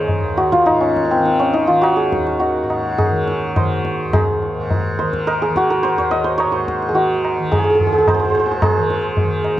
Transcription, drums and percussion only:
0.08 tabla tin, tabla ge
0.38 tabla na
0.53 tabla ke
0.67 tabla na
0.97 tabla ke
1.12 tabla te
1.26 tabla te
1.54 tabla te
1.84 tabla na
2.13 tabla ke
2.27 tabla te
2.42 tabla tin
2.70 tabla na
2.99 tabla na, tabla ge
3.28 tabla te
3.56 tabla na, tabla ge
3.85 tabla te
4.13 tabla na, tabla ge
4.42 tabla te
4.71 tabla tin, tabla ge
4.99 tabla na
5.14 tabla ke
5.28 tabla na
5.56 tabla ke
5.71 tabla te
5.85 tabla te
6.12 tabla te
6.40 tabla na
6.68 tabla ke
6.82 tabla te
6.96 tabla tin
7.25 tabla na
7.52 tabla na, tabla ge
7.80 tabla ge
8.07 tabla na, tabla ge
8.35 tabla te
8.62 tabla na, tabla ge
8.90 tabla te
9.17 tabla tin, tabla ge
9.45 tabla na

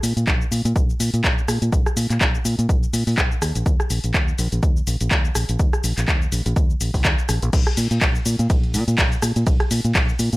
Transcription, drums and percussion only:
0.03 open hi-hat, cabasa
0.17 closed hi-hat, cabasa
0.27 kick, clap, closed hi-hat, cabasa
0.41 cabasa
0.52 open hi-hat, cabasa
0.65 closed hi-hat, cabasa
0.76 kick, closed hi-hat, cabasa
0.90 cabasa
1.00 open hi-hat, cabasa
1.14 closed hi-hat, cabasa
1.24 kick, clap, closed hi-hat, cabasa
1.38 cabasa
1.48 cross-stick, open hi-hat, cabasa
1.62 closed hi-hat, cabasa
1.72 kick, closed hi-hat, cabasa
1.86 cross-stick, cabasa
1.97 open hi-hat, cabasa
2.10 clap, closed hi-hat, cabasa
2.21 kick, clap, closed hi-hat, cabasa
2.35 cabasa
2.45 open hi-hat, cabasa
2.59 closed hi-hat, cabasa
2.69 kick, closed hi-hat, cabasa
2.83 cabasa
2.94 open hi-hat, cabasa
3.07 open hi-hat, cabasa
3.18 kick, clap, closed hi-hat, cabasa
3.31 cabasa
3.42 cross-stick, open hi-hat, cabasa
3.55 closed hi-hat, cabasa
3.66 kick, closed hi-hat, cabasa
3.80 cross-stick, cabasa
3.90 open hi-hat, cabasa
4.04 closed hi-hat, cabasa
4.14 kick, clap, closed hi-hat, cabasa
4.28 cabasa
4.38 open hi-hat, cabasa
4.52 closed hi-hat, cabasa
4.63 kick, closed hi-hat, cabasa
4.77 cabasa
4.87 open hi-hat, cabasa
5.01 closed hi-hat, cabasa
5.11 kick, clap, closed hi-hat, cabasa
5.25 cabasa
5.35 cross-stick, open hi-hat, cabasa
5.49 closed hi-hat, cabasa
5.59 kick, closed hi-hat, cabasa
5.73 cross-stick, cabasa
5.84 open hi-hat, cabasa
5.98 clap, closed hi-hat, cabasa
6.08 kick, clap, closed hi-hat, cabasa
6.22 cabasa
6.32 open hi-hat, cabasa
6.46 closed hi-hat, cabasa
6.56 kick, closed hi-hat, cabasa
6.70 cabasa
6.81 open hi-hat, cabasa
6.94 kick, open hi-hat, cabasa
7.05 kick, clap, closed hi-hat, cabasa
7.18 cabasa
7.29 cross-stick, open hi-hat, cabasa
7.42 closed hi-hat, cabasa
7.53 kick, closed hi-hat, crash, ride, cabasa
7.67 cross-stick, closed hi-hat
7.77 open hi-hat, cabasa
7.91 closed hi-hat, cabasa
8.01 kick, clap, closed hi-hat, ride, cabasa
8.15 cabasa
8.26 open hi-hat, cabasa
8.39 closed hi-hat, cabasa
8.50 kick, closed hi-hat, ride, cabasa
8.63 closed hi-hat
8.74 open hi-hat, cabasa
8.88 closed hi-hat, cabasa
8.98 kick, clap, closed hi-hat, ride, cabasa
9.12 closed hi-hat, cabasa
9.22 cross-stick, open hi-hat, cabasa
9.36 closed hi-hat, cabasa
9.47 kick, closed hi-hat, ride, cabasa
9.60 cross-stick, closed hi-hat
9.71 open hi-hat, cabasa
9.84 closed hi-hat, cabasa
9.95 kick, clap, closed hi-hat, ride, cabasa
10.09 cabasa
10.19 open hi-hat, cabasa
10.33 closed hi-hat, cabasa

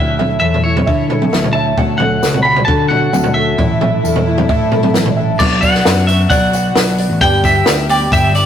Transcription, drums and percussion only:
0.19 floor tom, mid tom
0.54 floor tom
0.77 floor tom, mid tom
0.88 kick
1.10 floor tom
1.22 mid tom
1.33 snare, mid tom
1.44 floor tom
1.78 kick, floor tom
2.00 floor tom, mid tom
2.23 snare, tambourine
2.34 floor tom
2.56 floor tom
2.68 kick
2.90 floor tom
3.13 mid tom, tambourine
3.24 floor tom
3.58 kick, floor tom
3.81 floor tom, mid tom
4.05 tambourine
4.16 floor tom
4.38 floor tom, mid tom
4.49 kick
4.72 floor tom
4.83 mid tom
4.94 snare, mid tom, tambourine
5.05 floor tom
5.40 kick, crash, tambourine
5.63 kick, open hi-hat, tambourine
5.74 snare
5.85 snare, open hi-hat, tambourine
5.98 tambourine
6.08 open hi-hat, tambourine
6.30 kick, open hi-hat, tambourine
6.44 tambourine
6.53 open hi-hat, tambourine
6.65 tambourine
6.76 snare, open hi-hat, tambourine
6.98 open hi-hat, tambourine
7.21 kick, open hi-hat, tambourine
7.44 kick, open hi-hat, tambourine
7.66 snare, open hi-hat, tambourine
7.79 tambourine
7.89 open hi-hat, tambourine
8.02 tambourine
8.12 kick, open hi-hat, tambourine
8.35 open hi-hat, tambourine

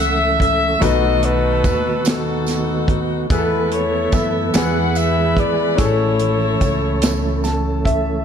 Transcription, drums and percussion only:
0.40 kick, closed hi-hat
0.81 kick, closed hi-hat, tambourine
1.23 closed hi-hat
1.64 kick, closed hi-hat, tambourine
2.05 snare, closed hi-hat, tambourine
2.46 snare, closed hi-hat, tambourine
2.88 kick, closed hi-hat
3.30 kick, closed hi-hat, tambourine
3.71 closed hi-hat
4.12 kick, snare, closed hi-hat, tambourine
4.54 snare, closed hi-hat, tambourine
4.95 closed hi-hat, tambourine
5.37 kick, closed hi-hat
5.78 kick, closed hi-hat, tambourine
6.19 closed hi-hat
6.61 kick, closed hi-hat, tambourine
7.02 snare, closed hi-hat, tambourine
7.44 snare, closed hi-hat, tambourine
7.85 kick, closed hi-hat

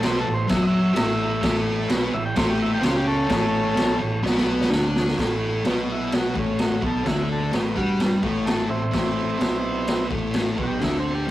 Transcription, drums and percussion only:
0.03 snare, crash
0.49 kick, snare, crash
0.96 snare, crash
1.43 kick, snare, crash
1.89 snare, crash
2.36 kick, snare, crash
2.83 snare, crash
3.30 kick, snare, crash
3.77 snare, crash
4.25 snare
4.37 snare
4.61 snare
4.72 snare
4.96 snare
5.08 snare
5.18 kick, snare, crash
5.65 snare, crash
6.12 snare, crash
6.36 kick
6.59 snare, crash
6.82 kick
7.06 kick, snare, crash
7.53 snare, crash
7.76 kick
8.00 snare, crash
8.23 kick
8.47 snare, crash
8.93 kick, snare, crash
9.41 snare, crash
9.87 snare, crash
10.11 kick
10.34 snare, crash
10.58 kick
10.82 kick, snare, crash

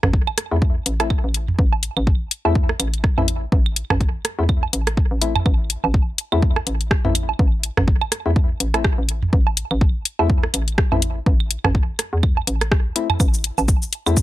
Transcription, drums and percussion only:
0.03 cross-stick, mid tom
0.13 kick
0.27 claves, low woodblock
0.38 cross-stick, closed hi-hat
0.62 kick
0.86 closed hi-hat
1.00 cross-stick, closed hi-hat, low woodblock
1.10 kick, claves
1.34 closed hi-hat
1.48 mid tom
1.59 kick
1.73 low woodblock
1.83 closed hi-hat
1.97 claves
2.07 kick
2.31 closed hi-hat
2.45 low woodblock
2.55 kick
2.69 cross-stick
2.80 closed hi-hat, claves
2.94 closed hi-hat
3.04 kick, cross-stick
3.18 mid tom, low woodblock
3.28 closed hi-hat
3.52 kick
3.66 claves
3.76 closed hi-hat
3.90 cross-stick, mid tom, low woodblock
4.01 kick, closed hi-hat
4.25 cross-stick, closed hi-hat
4.49 kick, claves
4.63 low woodblock
4.73 closed hi-hat
4.87 cross-stick, closed hi-hat
4.97 kick
5.22 closed hi-hat
5.36 mid tom, claves, low woodblock
5.46 kick, claves
5.70 closed hi-hat
5.84 low woodblock
5.94 kick
6.18 closed hi-hat
6.32 claves
6.42 kick
6.56 cross-stick, low woodblock
6.67 closed hi-hat
6.81 closed hi-hat
6.91 kick, cross-stick
7.05 mid tom
7.15 closed hi-hat, claves
7.29 low woodblock
7.39 kick
7.63 closed hi-hat
7.77 cross-stick, mid tom
7.88 kick
8.01 claves, low woodblock
8.12 cross-stick, closed hi-hat
8.36 kick
8.60 closed hi-hat
8.74 cross-stick, closed hi-hat, low woodblock
8.84 kick, cross-stick, claves
9.09 closed hi-hat
9.22 mid tom
9.33 kick
9.47 low woodblock
9.57 closed hi-hat
9.71 claves
9.81 kick
10.05 closed hi-hat
10.19 low woodblock
10.30 kick
10.43 cross-stick
10.54 closed hi-hat, claves
10.68 closed hi-hat
10.78 kick, cross-stick
10.92 mid tom, low woodblock
11.02 closed hi-hat
11.26 kick
11.40 claves
11.51 closed hi-hat
11.65 cross-stick, mid tom, low woodblock
11.75 kick
11.99 cross-stick, closed hi-hat
12.23 kick, claves
12.37 low woodblock
12.47 closed hi-hat
12.61 cross-stick, closed hi-hat
12.72 kick, cross-stick
12.96 closed hi-hat
13.10 mid tom, claves, low woodblock
13.20 kick, cabasa, claves
13.34 cabasa
13.44 closed hi-hat
13.58 cabasa, low woodblock
13.68 kick, cabasa
13.82 cabasa
13.93 closed hi-hat
14.07 cabasa, claves
14.17 kick, cabasa

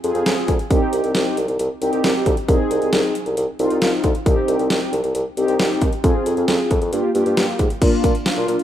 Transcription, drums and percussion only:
0.04 closed hi-hat
0.15 closed hi-hat
0.26 snare, closed hi-hat
0.48 kick, closed hi-hat
0.59 closed hi-hat
0.71 kick, closed hi-hat
0.93 closed hi-hat
1.04 closed hi-hat
1.15 snare, closed hi-hat
1.37 closed hi-hat
1.48 closed hi-hat
1.59 closed hi-hat
1.82 closed hi-hat
1.93 closed hi-hat
2.04 snare, closed hi-hat
2.26 kick, closed hi-hat
2.37 closed hi-hat
2.48 kick, closed hi-hat
2.71 closed hi-hat
2.82 closed hi-hat
2.93 snare, closed hi-hat
3.15 closed hi-hat
3.26 closed hi-hat
3.37 closed hi-hat
3.59 closed hi-hat
3.70 closed hi-hat
3.82 snare, closed hi-hat
4.04 kick, closed hi-hat
4.15 closed hi-hat
4.26 kick, closed hi-hat
4.48 closed hi-hat
4.59 closed hi-hat
4.70 snare, closed hi-hat
4.93 closed hi-hat
5.04 closed hi-hat
5.15 closed hi-hat
5.37 closed hi-hat
5.48 closed hi-hat
5.59 snare, closed hi-hat
5.81 kick, closed hi-hat
5.93 closed hi-hat
6.04 kick, closed hi-hat
6.26 closed hi-hat
6.37 closed hi-hat
6.48 snare, closed hi-hat
6.71 kick, closed hi-hat
6.82 closed hi-hat
6.93 closed hi-hat
7.15 closed hi-hat
7.26 closed hi-hat
7.37 snare, closed hi-hat
7.59 kick, closed hi-hat
7.70 closed hi-hat
7.82 kick, closed hi-hat, crash
8.04 kick, closed hi-hat
8.15 closed hi-hat
8.26 snare, closed hi-hat
8.48 closed hi-hat
8.59 closed hi-hat

